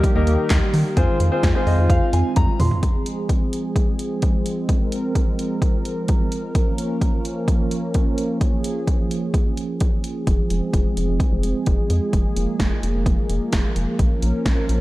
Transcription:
Already playing: D#3 G3 A#3 G4
0.04 kick, closed hi-hat
0.15 D#2 A#3 D#4 G4 A#4
0.27 D#2, closed hi-hat
0.50 D#2, kick, snare, clap, closed hi-hat
0.74 D#3, open hi-hat
0.97 F2 G#3 C4 F4 G#4 C5, kick, closed hi-hat
1.20 F2, closed hi-hat
1.32 C4 F4 G#4 C5
1.43 F2, kick, snare, closed hi-hat
1.55 C4 F4 G#4 C5
1.67 F2 D#5, open hi-hat
1.78 F2
1.90 F2 F5, kick, closed hi-hat
2.13 F2 G#5, closed hi-hat
2.36 F2 A#5, kick, closed hi-hat, high tom
2.60 F2 C6, mid tom, open hi-hat
2.71 floor tom
2.83 F3 G#3 C4 G#4, kick, closed hi-hat
3.06 closed hi-hat
3.29 kick, closed hi-hat
3.53 closed hi-hat
3.76 kick, closed hi-hat
3.99 closed hi-hat
4.22 kick, closed hi-hat
4.46 closed hi-hat
4.69 A#4, kick, closed hi-hat
4.92 closed hi-hat
5.15 kick, closed hi-hat
5.39 closed hi-hat
5.62 kick, closed hi-hat
5.85 closed hi-hat
6.08 kick, closed hi-hat
6.32 closed hi-hat
6.55 A#3 C#4, kick, closed hi-hat
6.78 closed hi-hat
7.01 kick, closed hi-hat
7.25 closed hi-hat
7.48 kick, closed hi-hat
7.71 closed hi-hat
7.94 kick, closed hi-hat
8.18 closed hi-hat
8.41 G#4, kick, closed hi-hat
8.64 closed hi-hat
8.87 kick, closed hi-hat
9.11 closed hi-hat
9.34 kick, closed hi-hat
9.57 closed hi-hat
9.80 kick, closed hi-hat
10.04 closed hi-hat
10.27 F1 G#3 C4, kick, closed hi-hat
10.50 F1, closed hi-hat
10.74 F1, kick, closed hi-hat
10.97 F1, closed hi-hat
11.09 F1
11.20 kick, closed hi-hat
11.32 F1
11.43 F1, closed hi-hat
11.66 F1, kick, closed hi-hat
11.90 F2, closed hi-hat
12.13 F1 A#3, kick, closed hi-hat
12.36 F1, closed hi-hat
12.60 F1, kick, snare, closed hi-hat
12.83 F1, closed hi-hat
12.95 F1
13.06 F1, kick, closed hi-hat
13.29 F1, closed hi-hat
13.52 F1, kick, snare, closed hi-hat
13.76 F1, closed hi-hat
13.99 A#1 F3 C#4 A#4, kick, closed hi-hat
14.22 A#1, closed hi-hat
14.46 A#1, kick, snare, closed hi-hat
14.69 A#1, closed hi-hat

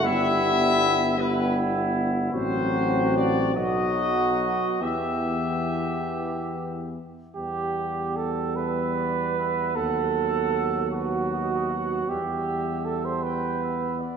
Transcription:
0.04 G1 G3 B3 E4 E5
1.17 G3 B3 E4 B4
2.33 A1 F#3 C4 F#4 C5
3.15 D5
3.54 B1 F#3 B3 F#4 D#5
4.81 E2 E3 B3 G4 E5
7.36 E2 G3 B3 G4
8.17 A4
8.56 B4 E5
8.96 D5
9.37 E5
9.75 D#2 F#3 A4 F#5
10.91 F#4 B4
11.31 D#5
11.69 F#5
12.08 E2 G3 B3 G4 E5
12.85 A4
13.05 C5
13.23 B4 G5
13.61 E5
13.99 D5

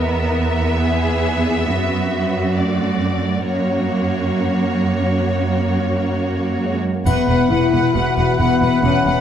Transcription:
Already playing: E2 B3 A#4 E5
0.82 G#4
1.69 F#2 F#4
2.58 A3 D5
3.46 F#2 A#3 F#4 C#5
6.60 G#3
6.95 A#3
7.05 E1 E2 B3 B4 E5 F#5 B5, triangle
7.28 E1 E2 B2 B4 F#5
7.50 E1 E2 E4 F#4 B4 F#5
7.72 E1 E2 B2 B4 F#5
7.94 E1 E2 F#4 B4 F#5
8.17 E1 E2 B3 B4 F#5
8.40 E1 E2 B3 F#4 B4 F#5
8.61 E1 E2 B2 B4 F#5
8.83 E1 E2 C#4 B4 F#5
9.06 E1 E2 B3 B4 F#5

